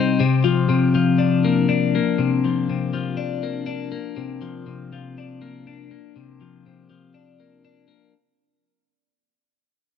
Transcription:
Already playing: C3 G3 C4 D#4
0.20 C3
0.44 F3
0.69 C3
0.95 F3
1.18 D4
1.45 A#3
1.69 D4
1.95 A#3
2.18 C3
2.44 F3
2.69 C3
2.93 F3
3.17 D4
3.43 A#3
3.66 D4
3.92 A#3
4.17 C3
4.41 F3
4.66 C3
4.93 F3
5.18 D4
5.42 A#3
5.67 D4
5.91 A#3
6.16 C3
6.41 F3
6.66 C3
6.90 F3
7.14 D4
7.40 A#3
7.65 D4
7.88 A#3

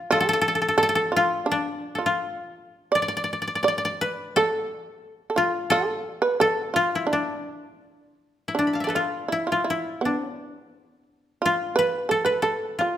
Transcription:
Already playing: F4
0.11 A4
0.20 A4
0.29 A4
0.33 A4
0.41 A4
0.48 A4
0.55 A4
0.62 A4
0.68 A4
0.78 A4
0.83 A4
0.89 A4
0.95 A4
1.12 F4
1.16 F4
1.46 D4
1.52 D4
1.95 F4 A4
2.06 F4
2.92 D5
3.02 D5
3.08 D5
3.17 D5
3.24 D5
3.33 D5
3.42 D5
3.48 D5
3.55 D5
3.63 D5
3.68 D5
3.78 D5
3.85 D5
4.01 B4
4.36 A4
5.30 A4
5.36 F4
5.70 A4
6.15 F4
6.22 B4
6.40 A4
6.74 F4
6.95 E4
7.07 D4
7.13 D4
8.48 E4
8.55 D4
8.67 B5
8.73 F5 A5
8.80 D5 E5
8.87 A4 B4
8.95 F4
9.28 E4
9.47 F4
9.52 F4
9.64 E4
9.70 E4
10.01 B3
10.05 D4
10.33 D4
11.42 F4
11.76 B4
12.09 A4
12.25 B4
12.42 A4
12.79 F4

